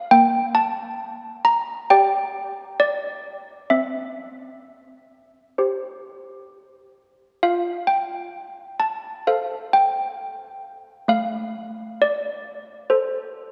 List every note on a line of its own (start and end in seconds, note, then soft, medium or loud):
0.11 3.69 A#3 medium
0.11 0.54 G5 medium
0.55 1.41 A5 medium
1.45 1.88 A#5 medium
1.90 3.69 G4 soft
1.90 2.79 D5 soft
1.90 2.77 G5 medium
2.80 3.68 D5 medium
3.70 7.38 C4 soft
3.70 6.46 E5 medium
5.58 7.39 G4 soft
5.58 7.39 C5 soft
7.43 11.04 F4 soft
7.43 7.87 F5 medium
7.87 8.76 G5 medium
8.80 9.24 A5 medium
9.27 11.05 A4 soft
9.27 11.04 C5 soft
9.27 9.70 F5 medium
9.73 11.05 G5 medium
11.08 13.52 A3 medium
11.08 11.96 F5 medium
12.02 12.86 D5 medium
12.90 13.52 A4 soft
12.90 13.52 C5 medium